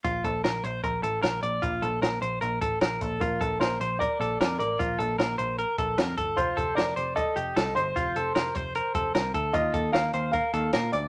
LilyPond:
<<
  \new Staff \with { instrumentName = "Upright piano" } { \time 4/4 \key bes \major \tempo 4 = 152 r1 | r1 | bes'4 c''4 d''4. bes'8~ | bes'2.~ bes'8 r8 |
c''4 d''4 ees''4. c''8~ | c''2.~ c''8 r8 | ees''4 f''4 f''4. d''8 | }
  \new Staff \with { instrumentName = "Clean electric guitar" } { \time 4/4 \key bes \major f'8 a'8 bes'8 c''8 bes'8 a'8 bes'8 d''8 | f'8 a'8 bes'8 c''8 bes'8 a'8 bes'8 a'8 | f'8 a'8 bes'8 c''8 bes'8 a'8 bes'8 d''8 | f'8 a'8 bes'8 c''8 bes'8 a'8 bes'8 a'8 |
f'8 a'8 bes'8 c''8 a'8 g'8 a'8 c''8 | f'8 a'8 bes'8 c''8 bes'8 a'8 bes'8 a'8 | f'8 a'8 bes'8 c''8 bes'8 a'8 bes'8 d''8 | }
  \new Staff \with { instrumentName = "Picked electric bass" } { \clef bass \time 4/4 \key bes \major bes,,8 bes,,8 bes,,8 bes,,8 bes,,8 a,,8 bes,,8 bes,,8 | bes,,8 bes,,8 bes,,8 bes,,8 bes,,8 a,,8 bes,,8 bes,,8 | bes,,8 bes,,8 bes,,8 bes,,8. r16 bes,,8 f,8 a,,8 | bes,,8 bes,,8 bes,,8 bes,,8. r16 bes,,8 f,8 g,,8 |
f,,8 f,,8 f,,8 f,,8. r16 f,,8 c,8 g,,8 | f,,8 f,,8 f,,8 f,,8. r16 f,,8 c,8 d,8 | ees,8 ees,8 ees,8 ees,8. r16 ees,8 bes,8 d,8 | }
  \new DrumStaff \with { instrumentName = "Drums" } \drummode { \time 4/4 <hh bd>8 <hh bd>8 <hh sn>8 hh8 <hh bd>8 hh8 <hh sn>8 hh8 | <hh bd>8 hh8 <hh sn>8 hh8 hh8 <hh bd>8 <hh sn>8 <hh bd>8 | <hh bd>8 <hh bd>8 <hh sn>8 hh8 <hh bd>8 hh8 <hh sn>8 hh8 | <hh bd>8 hh8 <hh sn>8 hh8 hh8 <hh bd>8 <hh sn>8 <hh bd>8 |
<hh bd>8 <hh bd>8 <hh sn>8 hh8 <hh bd>8 hh8 <hh sn>8 hh8 | <hh bd>8 hh8 <hh sn>8 <hh bd>8 hh8 <hh bd>8 <hh sn>8 <hh bd>8 | <hh bd>8 <hh bd>8 <hh sn>8 hh8 <hh bd>8 hh8 <hh sn>8 hh8 | }
>>